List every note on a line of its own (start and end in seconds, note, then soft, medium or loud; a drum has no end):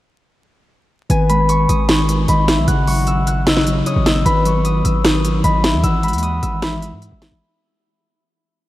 1.10 1.67 G#1 loud
1.10 1.88 D#3 loud
1.10 1.85 B4 loud
1.10 2.60 G#5 loud
1.10 closed hi-hat medium
1.29 2.08 G#3 medium
1.29 2.28 B5 medium
1.29 closed hi-hat medium
1.49 1.88 C#6 medium
1.49 closed hi-hat medium
1.69 2.26 G#1 loud
1.69 2.87 D#6 medium
1.69 closed hi-hat medium
1.89 2.68 D#3 loud
1.89 2.87 C#6 medium
1.89 snare loud
1.89 closed hi-hat medium
2.09 2.68 G#3 medium
2.09 closed hi-hat medium
2.28 2.59 G#1 loud
2.28 2.47 D#5 medium
2.28 3.64 B5 medium
2.28 closed hi-hat medium
2.48 2.68 B3 medium
2.48 2.67 E5 medium
2.48 snare loud
2.48 closed hi-hat medium
2.58 2.67 B1 loud
2.68 3.82 G#1 loud
2.68 3.46 C#3 loud
2.68 3.43 F#5 loud
2.68 3.27 F#6 loud
2.68 closed hi-hat medium
2.87 3.65 F#3 medium
2.87 4.14 C#6 medium
2.87 open hi-hat medium
3.07 3.47 E6 medium
3.07 closed hi-hat medium
3.27 4.34 F#6 medium
3.27 closed hi-hat medium
3.47 4.26 C#3 medium
3.47 3.84 D#5 medium
3.47 3.92 E6 medium
3.47 snare loud
3.47 closed hi-hat medium
3.57 snare medium
3.67 4.26 F#3 medium
3.67 closed hi-hat medium
3.86 4.05 C#5 medium
3.86 4.12 D#6 medium
3.86 closed hi-hat medium
3.96 4.25 G#1 loud
4.06 4.26 A#3 medium
4.06 4.25 D#5 medium
4.06 4.71 E6 medium
4.06 snare loud
4.06 closed hi-hat medium
4.25 4.83 G#1 loud
4.25 5.03 D#3 medium
4.25 5.01 B4 loud
4.25 5.43 B5 loud
4.25 closed hi-hat medium
4.45 5.23 F#3 medium
4.45 5.72 C#6 medium
4.45 closed hi-hat medium
4.65 4.90 D#6 medium
4.65 closed hi-hat medium
4.84 5.42 G#1 loud
4.84 5.11 E6 medium
4.84 closed hi-hat medium
5.04 5.83 D#3 loud
5.04 5.89 D#6 medium
5.04 snare loud
5.04 closed hi-hat medium
5.25 5.84 F#3 medium
5.25 closed hi-hat medium
5.44 5.75 G#1 loud
5.44 5.63 D#5 medium
5.44 6.03 B5 medium
5.44 closed hi-hat medium
5.64 5.84 B3 medium
5.64 5.83 E5 medium
5.64 snare loud
5.64 closed hi-hat medium
5.74 5.83 D#2 loud
5.83 6.15 G#1 loud
5.83 6.61 E3 medium
5.83 6.59 F#5 loud
5.83 6.29 E6 loud
5.83 closed hi-hat medium
6.03 6.81 G#3 medium
6.03 6.62 B5 medium
6.03 closed hi-hat soft
6.03 open hi-hat medium
6.08 closed hi-hat medium
6.13 6.41 D#2 loud
6.13 closed hi-hat medium
6.18 closed hi-hat medium
6.23 6.48 D#6 medium
6.23 closed hi-hat medium
6.42 6.94 G#1 loud
6.42 7.56 E6 medium
6.42 closed hi-hat medium
6.62 7.41 E3 medium
6.62 7.38 E5 loud
6.62 7.98 B5 medium
6.62 snare loud
6.62 closed hi-hat medium
6.82 7.41 G#3 medium
6.82 closed hi-hat medium
6.92 7.11 G#2 loud
7.02 closed hi-hat medium
7.12 7.31 G#1 loud
7.22 snare loud
7.22 closed hi-hat medium
7.32 7.41 G#1 loud